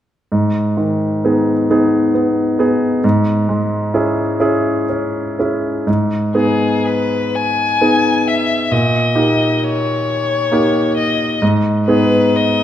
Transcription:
0.32 2.99 G#2 soft
0.77 1.51 D#3 soft
1.24 1.66 B3 soft
1.24 1.66 D#4 soft
1.24 1.66 G#4 soft
1.70 2.11 B3 soft
1.70 2.11 D#4 soft
1.70 2.11 G#4 soft
2.14 2.57 B3 soft
2.59 2.99 B3 soft
2.59 2.99 D#4 soft
2.59 3.00 G#4 soft
3.04 5.83 G#2 soft
3.49 4.22 G#3 soft
3.94 4.37 C#4 soft
3.94 4.37 E4 soft
3.94 4.37 G#4 soft
4.40 4.84 C#4 soft
4.40 4.85 E4 soft
4.40 4.85 G#4 soft
4.90 5.38 C#4 soft
5.39 5.83 C#4 soft
5.39 5.84 E4 soft
5.39 5.84 G#4 soft
5.87 6.34 G#2 soft
6.34 7.77 B3 soft
6.34 7.77 D#4 soft
6.34 7.77 G#4 soft
6.34 6.87 G#4 soft
6.86 7.37 B4 soft
7.35 8.29 G#5 medium
7.81 8.68 B3 soft
7.81 8.68 D#4 soft
7.81 8.68 G#4 soft
8.27 8.74 E5 soft
8.71 9.15 A#2 soft
8.71 9.65 D#5 soft
9.15 10.47 A#3 soft
9.15 10.47 D#4 soft
9.15 10.47 G4 soft
9.64 10.96 C#5 medium
10.51 11.37 A#3 soft
10.51 11.38 D#4 soft
10.51 11.38 G4 soft
10.97 11.41 D#5 soft
11.42 11.87 G#2 soft
11.87 12.63 B3 soft
11.87 12.63 D#4 soft
11.87 12.63 G#4 soft
11.87 12.38 B4 soft
12.36 12.63 D#5 soft

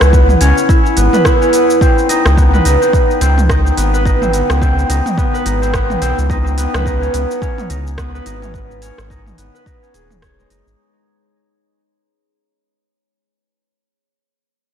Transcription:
0.00 0.36 C#2 medium
0.00 0.13 B3 medium
0.00 0.41 C#4 medium
0.00 0.69 E4 medium
0.00 1.13 B4 medium
0.00 cross-stick medium
0.00 cabasa soft
0.13 0.97 B3 medium
0.13 kick loud
0.13 cabasa soft
0.29 mid tom medium
0.29 cabasa soft
0.41 0.53 C#2 medium
0.41 1.41 C#4 loud
0.41 open hi-hat medium
0.41 cabasa medium
0.58 cabasa soft
0.69 1.25 E4 medium
0.69 kick loud
0.69 cabasa soft
0.86 cabasa soft
0.97 1.09 G#1 medium
0.97 1.53 B3 medium
0.97 open hi-hat medium
0.97 cabasa medium
1.13 1.87 B4 medium
1.13 mid tom medium
1.13 cabasa soft
1.25 2.15 E4 medium
1.25 kick loud
1.25 cross-stick medium
1.25 cabasa soft
1.41 1.87 C#4 medium
1.41 cabasa soft
1.53 1.87 B3 medium
1.53 open hi-hat medium
1.53 cabasa medium
1.70 cabasa soft
1.81 2.43 C4 loud
1.81 kick loud
1.81 cabasa soft
1.98 cabasa soft
2.09 2.65 D#4 medium
2.09 open hi-hat medium
2.09 cabasa medium
2.26 2.60 C#2 loud
2.26 cross-stick medium
2.26 cabasa soft
2.37 2.88 B3 medium
2.37 kick loud
2.37 cabasa soft
2.54 2.88 B4 medium
2.54 mid tom medium
2.54 cabasa soft
2.65 2.77 C#2 medium
2.65 3.49 D#4 medium
2.65 open hi-hat medium
2.65 cabasa medium
2.82 2.99 C4 medium
2.82 cabasa soft
2.93 3.27 B3 medium
2.93 kick loud
2.93 cabasa soft
3.11 cabasa soft
3.21 3.72 C#2 medium
3.21 3.83 C4 loud
3.21 open hi-hat medium
3.21 cabasa medium
3.38 mid tom medium
3.38 cabasa soft
3.49 4.05 D#4 medium
3.49 kick loud
3.49 cross-stick medium
3.49 cabasa soft
3.67 cabasa soft
3.77 4.43 G#1 loud
3.77 4.28 B3 medium
3.77 open hi-hat medium
3.77 cabasa medium
3.94 4.28 B4 medium
3.94 cabasa soft
4.05 4.89 D#4 medium
4.05 kick loud
4.05 cabasa soft
4.22 4.39 C4 medium
4.22 mid tom medium
4.22 cabasa soft
4.33 4.67 B3 medium
4.33 open hi-hat medium
4.33 cabasa medium
4.50 4.84 C#2 loud
4.50 cross-stick medium
4.50 cabasa soft
4.61 5.24 C4 loud
4.61 kick loud
4.61 cabasa soft
4.79 cabasa soft
4.90 5.01 C#2 medium
4.90 5.45 D#4 medium
4.90 open hi-hat medium
4.90 cabasa medium
5.06 mid tom medium
5.06 cabasa soft
5.18 5.68 B3 medium
5.18 kick loud
5.18 cabasa soft
5.34 5.68 B4 medium
5.34 cabasa soft
5.46 5.96 G#1 medium
5.46 6.29 D#4 medium
5.46 open hi-hat medium
5.46 cabasa medium
5.62 5.80 C4 medium
5.62 cabasa soft
5.74 6.08 B3 medium
5.74 kick loud
5.74 cross-stick medium
5.74 cabasa soft
5.90 mid tom medium
5.90 cabasa soft
6.02 6.13 B1 medium
6.02 6.64 C4 loud
6.02 open hi-hat medium
6.02 cabasa medium
6.18 6.67 C#2 medium
6.18 cabasa soft
6.30 6.86 D#4 medium
6.30 kick loud
6.30 cabasa soft
6.47 cabasa soft
6.58 7.14 B3 medium
6.58 open hi-hat medium
6.58 cabasa medium
6.74 7.09 C#2 loud
6.74 8.14 B4 medium
6.74 cross-stick medium
6.74 mid tom medium
6.74 cabasa soft
6.86 7.70 D#4 medium
6.86 kick medium
6.86 cabasa soft
7.02 7.42 C#4 medium
7.02 cabasa soft
7.14 7.26 C#2 medium
7.14 7.98 B3 medium
7.14 open hi-hat medium
7.14 cabasa medium
7.31 cabasa soft
7.42 8.42 C#4 loud
7.42 kick loud
7.42 cabasa soft
7.58 mid tom medium
7.58 cabasa soft
7.70 8.21 C#2 loud
7.70 8.26 D#4 medium
7.70 open hi-hat loud
7.70 cabasa medium
7.87 cabasa soft
7.98 8.53 B3 medium
7.98 kick loud
7.98 cross-stick medium
7.98 cabasa soft
8.14 9.54 B4 medium
8.14 cabasa soft
8.26 8.91 G#1 loud
8.26 9.10 D#4 medium
8.26 open hi-hat medium
8.26 cabasa medium
8.42 8.82 C#4 medium
8.42 mid tom medium
8.42 cabasa soft
8.54 9.38 B3 medium
8.54 kick loud
8.54 cabasa soft
8.71 cabasa soft
8.82 9.82 C#4 loud
8.82 open hi-hat medium
8.82 cabasa medium
8.98 9.33 G#1 loud
8.98 cross-stick medium
8.98 cabasa soft
9.10 9.66 D#4 medium
9.10 kick medium
9.10 cabasa soft
9.27 mid tom medium
9.27 cabasa soft
9.38 9.50 G#1 medium
9.38 12.49 B3 medium
9.38 open hi-hat loud
9.38 cabasa medium
9.54 11.59 B4 medium
9.54 cabasa soft
9.66 10.50 D#4 medium
9.66 kick loud
9.66 cabasa soft
9.83 12.72 C#4 medium
9.83 cabasa soft
9.94 10.45 D#1 medium
9.94 12.22 G#4 medium
9.94 open hi-hat medium
9.94 cabasa medium
10.11 mid tom medium
10.11 cabasa soft
10.22 12.13 C#5 medium
10.22 kick loud
10.22 cross-stick medium
10.22 cabasa soft
10.39 10.83 G#3 medium
10.39 cabasa soft
10.50 10.62 F#1 loud
10.50 13.21 D#4 medium
10.50 open hi-hat loud
10.50 cabasa medium
10.67 10.75 G#1 medium
10.67 cabasa soft

